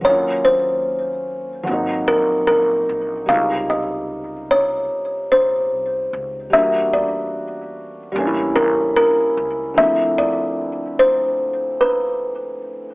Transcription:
0.01 D#2 F#3 A#3 C#5
0.07 C#4 F4
0.45 C5
1.63 G#1 F#3 A#3
1.69 C4 D#4
2.08 A#1 A#4
2.47 A#1 A#4
2.89 A#1
3.26 C#2 C3 G3 F5
3.31 D#4 F4
3.70 D#5
4.51 C#5
5.32 A#1 C5
5.73 C2
6.13 C#2
6.50 E2 G3 A#3 E5
6.55 D4 F#4
6.94 D5
8.12 A1 G3 A#3
8.17 C#4 D4
8.27 E4
8.56 A1 A#4
8.96 A#4
9.37 C#2
9.74 D2 F3 E5
9.78 A3 C4
9.83 E4
10.18 D5
10.99 C5
11.81 B4

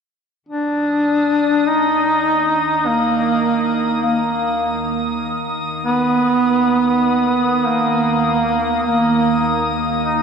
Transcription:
0.43 D#2 D#3 D#6
0.49 D4
1.68 D#4
2.15 A#3
2.86 A#3
3.06 A#4
4.06 A#3
5.85 B3
7.67 A#3
8.86 A#3
10.05 D#4

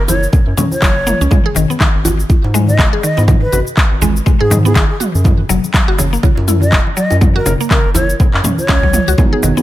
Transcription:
0.00 F#1
0.08 E4 C#5, djembe slap, djembe tone, high conga, djembe bass, shaker
0.23 shaker
0.33 kick, low conga, shaker
0.47 F#2
0.57 C#4, mid tom, high conga, low conga, shaker
0.71 C#5, djembe tone, shaker
0.82 F#1 F#3, kick, clap, djembe slap, shaker
1.07 A#3, mid tom, djembe tone, shaker
1.21 C#2 C#4, shaker
1.31 G#3, kick, mid tom, high conga, djembe tone, low conga, shaker
1.46 G#4
1.55 G#1 D#3, low conga, shaker
1.70 B3, high conga, shaker
1.80 D#3, kick, clap, shaker
1.95 G#1
2.05 F#4, djembe slap, high conga, djembe tone, djembe bass, shaker
2.20 shaker
2.29 kick, djembe bass, shaker
2.44 G#2, djembe slap
2.54 G#3, mid tom, djembe tone, shaker
2.68 D#5, djembe tone, high conga, shaker
2.79 F#1 G#3, kick, clap, djembe tone, low conga, shaker
2.93 G#4, high conga
3.03 D#3 D#5, shaker
3.17 G#2 B3, djembe slap, shaker
3.28 D#3, kick, mid tom, djembe tone, high conga, low conga, shaker
3.42 B4
3.52 G#1 F#4, low conga, shaker
3.67 shaker
3.77 kick, clap, shaker
3.91 G#1
4.01 G#3, djembe slap, djembe tone, high conga, djembe bass, shaker
4.16 shaker
4.26 G#3, kick, low conga, shaker
4.41 G#2 G#4
4.50 D#3, mid tom, high conga, low conga, shaker
4.65 B3 G#4, djembe tone, shaker
4.75 F#1 D#3 G#4, kick, clap, djembe slap, shaker
4.90 G#4
5.00 F#4, mid tom, shaker
5.15 F#2, shaker
5.24 kick, mid tom, high conga, djembe tone, low conga, shaker
5.49 F#1 F#3, low conga, shaker
5.64 high conga, shaker
5.74 F#3, kick, clap, shaker
5.88 F#1 F#4
5.98 C#3, djembe slap, high conga, djembe tone, djembe bass, shaker
6.13 A#3, shaker
6.23 C#3, kick, djembe bass, shaker
6.37 F#2, djembe slap
6.47 E4, mid tom, djembe tone, shaker
6.62 D#5, djembe tone, high conga, shaker
6.72 E1, kick, clap, low conga, shaker
6.87 high conga
6.97 F#3 D#5, shaker
7.10 F#2, djembe slap, shaker
7.21 F#3, kick, mid tom, high conga, djembe tone, low conga, shaker
7.36 F#4 A#4
7.46 F#1 C#3, djembe slap, low conga, shaker
7.61 A#3, shaker
7.71 C#3 A#4, kick, clap, shaker
7.85 F#1
7.94 E4 C#5, djembe slap, djembe tone, high conga, djembe bass, shaker
8.09 shaker
8.20 kick, low conga, shaker
8.34 F#2, clap
8.43 C#4, mid tom, high conga, low conga, shaker
8.58 C#5, djembe tone, shaker
8.68 C#2 C#4, kick, clap, djembe slap, shaker
8.83 F#3, kick
8.93 F#3, mid tom, djembe tone, shaker
9.08 C#2 F#4, shaker
9.18 G#3 B3 D#4 F#4 A#4, kick, mid tom, high conga, djembe tone, low conga, shaker
9.33 G#4
9.43 G#1 D#3, low conga, shaker
9.57 B3 D#4 F#4 G#4, high conga, shaker

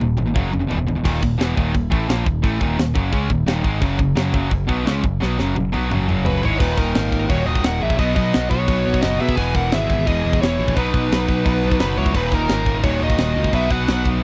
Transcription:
0.00 D#1 D#2 A#2, high tom
0.17 G#1 D#2 A#2, high tom
0.27 D#2 A#2
0.35 F#1 F#2 C#3 F#3, kick, mid tom
0.53 F#2 C#3, mid tom
0.60 F#2 C#3
0.69 E1 E2 B2 E3, floor tom
0.78 E2 B2
0.87 E1 E2 B2, floor tom
0.96 E2 B2
1.04 D#1 D#2 A#2 D#3, kick, crash, china
1.22 D#1 D#2 A#2, kick
1.38 E1 E2 B2 E3, snare, china
1.55 D#1 D#2 A#2 D#3, kick
1.73 D#1 D#2 A#2, kick, china
1.90 A1 A2 E3 A3, kick
2.08 A#1 A#2 F3 A#3, snare, china
2.25 D#1 D#2 A#2, kick
2.43 A1 A2 E3 A3, kick, china
2.60 D#1 D#2 A#2 D#3, kick
2.77 D#1 D#2 A#2, snare, china
2.94 F#1 F#2 C#3 F#3, kick
3.11 C#2 C#3 G#3 C#4, kick, china
3.29 D#1 D#2 A#2, kick
3.47 D#1 D#2 A#2 D#3, snare, china
3.63 G#1 G#2 D#3 G#3, kick
3.80 F#1 F#2 C#3 F#3, kick, china
3.99 F#1 F#2 C#3, kick
4.15 F#1 F#2 C#3 F#3, snare, china
4.33 F#1 F#2 C#3 F#3, kick
4.51 F#1 F#2 C#3, kick, china
4.68 B1 B2 F#3 B3, kick
4.85 C#2 C#3 G#3 C#4, snare, china
5.02 F#1 F#2 C#3, kick
5.20 B1 B2 F#3 B3, snare
5.37 F#1 F#2 C#3 F#3, snare
5.56 F#1 F#2 C#3, high tom
5.72 B1 B2 F#3 B3, high tom
5.90 F#1 F#2 C#3 F#3, mid tom
6.08 F#1 F#2 C#3 F#3, mid tom
6.25 F#4 B4, floor tom
6.42 G#1 G#2 D#3 G#3 E4 C#5, floor tom
6.59 D#1 D#2 A#2 D#3 D#4 B4, kick, crash
6.77 D#1 D#4 A#4, kick, crash
6.95 G#1, snare, crash
7.12 kick, crash
7.27 D#1 D#2 A#2 D#3 F#4 C#5, kick, crash
7.46 D#1 F#4 D#5, crash
7.55 kick
7.63 D#1 A#4 F#5, snare, crash
7.80 A#1 D#2 A#2 D#3 G#4 E5, crash
7.90 kick
7.97 B1 B2 F#3 B3 F#4 D#5, kick, crash
8.15 B1 F#4 D#5, kick, crash
8.33 B1, snare, crash
8.50 B1 F#4 C#5, kick, crash
8.67 B1 B2 F#3 B3, kick, crash
8.85 B1, crash
8.94 kick
9.02 F#1 F#4 D#5, snare, crash
9.19 B2 F#3 B3 G#4 E5, crash
9.29 kick
9.36 E1 E2 B2 E3 B4 G#5, kick, crash
9.54 E1 A#4 F#5, kick, crash
9.72 G#1 G#4 E5, snare, crash
9.90 kick, crash
10.06 E1 E2 B2 E3 G#4 D#5, kick, crash
10.25 E1, crash
10.33 kick
10.41 E1 E4 C#5, snare, crash
10.57 A#1 E2 B2 E3, crash
10.68 kick
10.75 B1 B2 F#3 B3 D#4 B4, kick, crash
10.94 B1, kick, crash
11.12 B1, snare, crash
11.29 B1, kick, crash
11.45 B1 B2 F#3 B3, kick, crash
11.63 B1, crash
11.71 kick
11.79 F#1 D#4 B4, snare, crash
11.96 C#2 B2 F#3 B3 E4 C#5, crash
12.06 kick
12.14 D#1 D#2 A#2 D#3 D#4 B4, kick, crash
12.31 D#1 D#4 A#4, kick, crash
12.49 G#1, snare, crash
12.66 kick, crash
12.83 D#1 D#2 A#2 D#3 F#4 C#5, kick, crash
13.00 D#1 F#4 D#5, crash
13.10 kick
13.18 D#1, snare, crash
13.35 C#2 D#2 A#2 D#3, crash
13.44 kick
13.52 B1 B2 F#3 B3 B4 E5, kick, crash
13.70 B1 B4 F#5, kick, crash
13.88 B1, snare, crash
14.05 B1, kick, crash

